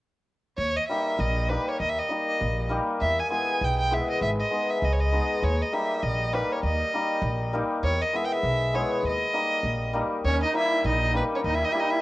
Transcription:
0.57 D#2 C#5
0.76 D#5
0.88 G3 A#3 D#4 G4 E5
1.19 A#1 D#5
1.49 G3 A#3 D#4 G4 B4
1.68 C#5
1.80 D#2 D#5
1.89 E5
1.99 D#5
2.09 G3 A#3 D#4 G4
2.41 A#1
2.69 G3 A#3 D#4 G4
3.01 E2 E5
3.19 G#5
3.30 G#3 B3 E4 G#4 G#5
3.61 B1 G5
3.79 G5
3.91 G#3 B3 E4 G#4 E5
4.10 D#5
4.21 G#1 E5
4.41 D#5
4.51 G#3 B3 D#4 G#4
4.70 E5
4.82 C#2 D#5
4.93 C#5
5.00 D#5
5.12 G#3 B3 D#4 G#4
5.43 D#2 C#5
5.62 D#5
5.72 G3 A#3 D#4 G4 E5
6.03 A#1 D#5
6.33 G3 A#3 D#4 G4 B4
6.52 C#5
6.63 D#2 D#5
6.94 G3 A#3 D#4 G4
7.22 A#1
7.53 G3 A#3 D#4 G4
7.83 E2 C#5
8.01 D#5
8.13 G#3 B3 E4 G#4 E5
8.24 G5
8.32 E5
8.43 B1
8.73 G#3 B3 E4 G#4 C#5
9.03 D#2 D#5
9.33 G3 A#3 D#4 G4
9.63 A#1
9.93 G3 A#3 D#4 G4
10.24 D#2 C#4 C#5
10.43 D#4 D#5
10.53 G3 A#3 D#4 E4 G4 E5
10.84 A#1 D#4 D#5
11.13 G3 A#3 B3 D#4 G4 B4
11.33 C#4 C#5
11.44 D#2 D#4 D#5
11.54 E4 E5
11.64 D#4 D#5
11.71 G3 A#3 D#4 E4 G4 E5
11.80 D#4 D#5
11.90 E4 E5

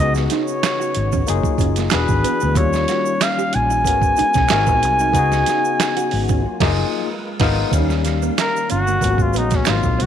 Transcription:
Already playing: B3 F#4
0.00 C#2 C#3 B3 D#4 F#4 G#4 D#5
0.15 snare, shaker
0.30 D#4 C#5, snare, closed hi-hat, shaker
0.47 shaker
0.63 finger snap, snare, clap, closed hi-hat, shaker
0.80 F#4, shaker
0.94 G#1, muted clean electric guitar stroke, closed hi-hat
1.12 C#4, kick, shaker
1.27 F#1 F#3 A#3 D#4 F4 G#4, muted clean electric guitar stroke, closed hi-hat, shaker
1.43 muted fingered electric bass stroke, kick, shaker
1.58 F#1 C#4, kick, closed hi-hat, shaker
1.76 A#3, snare, closed hi-hat, shaker
1.90 E1 E3 B3 D4 F#4 G#4 B4, finger snap, muted clean electric guitar stroke, snare, clap, closed hi-hat, shaker
1.94 G#4
2.08 G#1, kick, shaker
2.24 B3, closed hi-hat, shaker
2.40 D2 B3, shaker
2.54 D#2 D#3 G3 A#3 C#4 F4 C#5, kick, closed hi-hat, shaker
2.58 G3 F4
2.73 snare, shaker
2.88 F#4, snare, closed hi-hat, shaker
3.06 shaker
3.21 F5, finger snap, snare, clap, closed hi-hat, shaker
3.39 G4, shaker
3.53 A#1 G#5, muted clean electric guitar stroke, closed hi-hat
3.70 D#4, shaker
3.84 G#1 G#3 B3 C#4 F#4 A#4, muted clean electric guitar stroke, kick, closed hi-hat, shaker
4.02 kick, shaker
4.17 D#4, muted fingered electric bass stroke, closed hi-hat, shaker
4.34 B1 C#4, kick, snare, closed hi-hat, shaker
4.49 G#1 A#3 C4 D#4 F#4, finger snap, snare, clap, closed hi-hat, shaker
4.53 C4 A#4
4.67 A#1 B3, kick, shaker
4.83 C2, muted clean electric guitar stroke, closed hi-hat, shaker
4.99 D#4, shaker
5.13 C#2 C#3 B3 D#4 F#4, kick, closed hi-hat, shaker
5.19 G#4
5.32 snare, shaker
5.46 D#4, snare, closed hi-hat, shaker
5.65 shaker
5.80 finger snap, snare, clap, closed hi-hat, shaker
5.97 F#4, closed hi-hat, shaker
6.11 G#1, muted clean electric guitar stroke, open hi-hat
6.29 C#4, kick, shaker
6.42 F#3 A#3 F4
6.60 F#1 A#3 D#4 F4 G#4, kick, snare, crash
7.07 G#3 A#4 B4
7.40 G#1 B3 D#4 F4 A#4, kick, snare, crash
7.71 D#2 D#3 G3 A#3 C#4 D#4 F5, kick, closed hi-hat, shaker
7.75 G3 F5
7.90 snare, shaker
8.05 muted clean electric guitar stroke, snare, closed hi-hat, shaker
8.22 A#3, shaker
8.37 A#4, finger snap, muted clean electric guitar stroke, snare, clap, closed hi-hat, shaker
8.56 shaker
8.70 G1 C#4 F#4, closed hi-hat, shaker
8.87 A#3, shaker
9.01 G#1 F#3 G#3 A#3 B3 C#4 F4, kick, closed hi-hat, shaker
9.11 F#4
9.18 F4, kick, shaker
9.33 A#1 B3 D#4, closed hi-hat, shaker
9.50 kick, snare, closed hi-hat, shaker
9.56 C#4
9.65 G#1 F#3 A#3 B3 C4 D#4 F4, finger snap, muted clean electric guitar stroke, snare, clap, closed hi-hat, shaker
9.73 C4
9.83 A#1, kick, shaker
9.98 C2 C4 F#4, closed hi-hat

